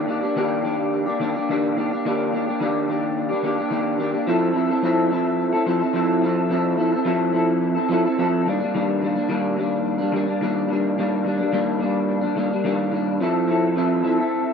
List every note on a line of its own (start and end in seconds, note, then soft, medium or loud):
0.07 0.22 D#3 medium
0.07 0.23 A#3 medium
0.07 0.22 D4 medium
0.07 0.20 G4 medium
0.21 0.36 A#3 soft
0.21 0.37 D4 medium
0.21 0.36 G4 medium
0.36 0.63 D#3 medium
0.36 0.64 A#3 medium
0.36 0.65 D4 medium
0.36 0.66 G4 loud
0.64 1.06 D#3 medium
0.64 1.07 A#3 medium
0.64 1.07 D4 medium
0.64 1.05 G4 medium
1.06 1.20 A#3 soft
1.06 1.21 D4 soft
1.06 1.20 G4 medium
1.20 1.34 D#3 medium
1.20 1.35 A#3 medium
1.20 1.35 D4 medium
1.24 1.33 G4 medium
1.34 1.49 D4 medium
1.34 1.48 G4 medium
1.39 1.49 A#3 soft
1.49 1.75 D#3 medium
1.49 1.77 A#3 medium
1.49 1.78 D4 medium
1.49 1.78 G4 medium
1.77 1.90 D#3 medium
1.77 1.91 A#3 medium
1.77 1.92 D4 medium
1.77 1.90 G4 medium
1.91 2.05 A#3 soft
1.91 2.06 D4 soft
1.91 2.05 G4 medium
2.05 2.31 D#3 medium
2.05 2.33 A#3 medium
2.05 2.34 D4 medium
2.05 2.34 G4 medium
2.33 2.46 D#3 medium
2.33 2.47 A#3 medium
2.33 2.48 D4 medium
2.33 2.45 G4 medium
2.46 2.60 A#3 soft
2.46 2.61 D4 medium
2.46 2.60 G4 medium
2.60 2.87 D#3 medium
2.60 2.88 A#3 medium
2.60 2.89 D4 medium
2.60 2.90 G4 loud
2.88 3.30 D#3 medium
2.88 3.31 A#3 medium
2.88 3.30 D4 medium
2.88 3.28 G4 medium
3.29 3.43 A#3 soft
3.29 3.44 D4 medium
3.29 3.44 G4 medium
3.43 3.57 D#3 medium
3.43 3.58 A#3 medium
3.43 3.58 D4 medium
3.43 3.57 G4 medium
3.58 3.71 A#3 soft
3.58 3.71 D4 soft
3.58 3.72 G4 medium
3.70 3.97 D#3 medium
3.70 3.99 A#3 medium
3.70 3.99 D4 medium
3.70 4.01 G4 medium
3.98 4.13 D#3 medium
3.98 4.14 A#3 medium
3.98 4.12 D4 medium
3.98 4.10 G4 medium
4.12 4.27 A#3 soft
4.12 4.28 D4 soft
4.12 4.27 G4 soft
4.27 4.52 F3 medium
4.27 4.54 C4 medium
4.27 4.55 E4 medium
4.27 4.57 A4 medium
4.53 4.69 F3 medium
4.53 4.70 C4 medium
4.53 4.69 E4 medium
4.58 4.66 A4 medium
4.67 4.83 E4 medium
4.67 4.83 A4 medium
4.72 4.82 C4 soft
4.82 5.09 F3 medium
4.82 5.11 C4 medium
4.82 5.12 E4 medium
4.82 5.12 A4 medium
5.11 5.53 F3 medium
5.11 5.54 C4 medium
5.11 5.54 E4 medium
5.11 5.51 A4 medium
5.53 5.66 C4 soft
5.53 5.68 E4 soft
5.53 5.67 A4 medium
5.66 5.81 F3 medium
5.66 5.81 C4 medium
5.66 5.81 E4 medium
5.66 5.79 A4 medium
5.80 5.94 C4 soft
5.80 5.94 E4 medium
5.80 5.95 A4 medium
5.93 6.21 F3 medium
5.93 6.22 C4 medium
5.93 6.23 E4 medium
5.93 6.24 A4 medium
6.22 6.48 F3 medium
6.22 6.50 C4 medium
6.22 6.51 E4 medium
6.22 6.51 A4 medium
6.49 6.76 F3 medium
6.49 6.77 C4 medium
6.49 6.79 E4 medium
6.49 6.79 A4 medium
6.77 6.92 F3 medium
6.77 6.93 C4 medium
6.77 6.93 E4 medium
6.77 6.91 A4 medium
6.92 7.06 E4 soft
6.92 7.07 A4 medium
6.96 7.05 C4 soft
7.05 7.31 F3 medium
7.05 7.33 C4 medium
7.05 7.34 E4 loud
7.05 7.35 A4 loud
7.33 7.76 F3 medium
7.33 7.76 C4 medium
7.33 7.75 E4 medium
7.33 7.73 A4 medium
7.74 7.91 E4 soft
7.74 7.90 A4 medium
7.79 7.89 C4 soft
7.89 8.04 F3 medium
7.89 8.05 C4 medium
7.89 8.05 E4 medium
7.93 8.03 A4 medium
8.04 8.18 C4 soft
8.04 8.19 E4 medium
8.04 8.19 A4 medium
8.18 8.47 F3 medium
8.18 8.47 C4 medium
8.18 8.47 E4 medium
8.18 8.48 A4 medium
8.46 8.60 D#3 medium
8.46 8.61 G3 medium
8.46 8.62 A#3 medium
8.46 8.59 D4 medium
8.60 8.74 A#3 soft
8.60 8.74 D4 medium
8.64 8.74 G3 soft
8.74 9.00 D#3 medium
8.74 9.02 G3 medium
8.74 9.03 A#3 medium
8.74 9.04 D4 medium
9.01 9.16 D#3 medium
9.01 9.17 G3 medium
9.01 9.16 A#3 medium
9.05 9.14 D4 medium
9.16 9.29 A#3 medium
9.16 9.30 D4 medium
9.20 9.29 G3 soft
9.29 9.55 D#3 medium
9.29 9.57 G3 medium
9.29 9.58 A#3 loud
9.29 9.59 D4 medium
9.56 9.99 D#3 medium
9.56 10.00 G3 medium
9.56 9.99 A#3 medium
9.56 9.97 D4 medium
9.98 10.12 G3 medium
9.98 10.14 A#3 medium
9.98 10.13 D4 medium
10.12 10.27 D#3 medium
10.12 10.28 G3 medium
10.12 10.27 A#3 medium
10.16 10.25 D4 medium
10.26 10.41 G3 soft
10.26 10.42 A#3 medium
10.26 10.41 D4 medium
10.41 10.67 D#3 medium
10.41 10.69 G3 medium
10.41 10.70 A#3 medium
10.41 10.71 D4 medium
10.69 10.97 D#3 medium
10.69 10.98 G3 medium
10.69 10.98 A#3 medium
10.73 10.99 D4 medium
10.98 11.23 D#3 medium
10.98 11.25 G3 medium
10.98 11.26 A#3 medium
10.98 11.27 D4 medium
11.24 11.39 D#3 medium
11.24 11.40 G3 medium
11.24 11.38 A#3 medium
11.24 11.37 D4 medium
11.38 11.52 G3 soft
11.38 11.53 A#3 medium
11.38 11.53 D4 medium
11.52 11.78 D#3 medium
11.52 11.79 G3 medium
11.52 11.81 A#3 medium
11.52 11.82 D4 loud
11.79 12.22 D#3 medium
11.79 12.23 G3 medium
11.79 12.22 A#3 medium
11.83 12.20 D4 medium
12.21 12.36 G3 soft
12.21 12.36 A#3 soft
12.21 12.36 D4 medium
12.35 12.50 D#3 medium
12.35 12.51 G3 medium
12.35 12.51 A#3 medium
12.35 12.49 D4 medium
12.50 12.64 G3 soft
12.50 12.65 A#3 soft
12.50 12.65 D4 medium
12.64 12.90 D#3 medium
12.64 12.92 G3 medium
12.64 12.93 A#3 medium
12.64 12.94 D4 medium
12.91 13.20 D#3 medium
12.91 13.20 G3 medium
12.91 13.21 A#3 medium
12.91 13.22 D4 medium
13.20 13.46 F3 medium
13.20 13.47 C4 medium
13.20 13.48 E4 medium
13.20 13.50 A4 medium
13.47 13.75 F3 medium
13.47 13.76 C4 medium
13.47 13.77 E4 medium
13.51 13.78 A4 medium
13.76 14.02 F3 medium
13.76 14.03 C4 medium
13.76 14.05 E4 medium
13.76 14.06 A4 medium
14.03 14.18 F3 medium
14.03 14.19 C4 medium
14.03 14.19 E4 medium
14.03 14.17 A4 medium
14.18 14.53 E4 medium
14.18 14.53 A4 medium
14.22 14.53 C4 soft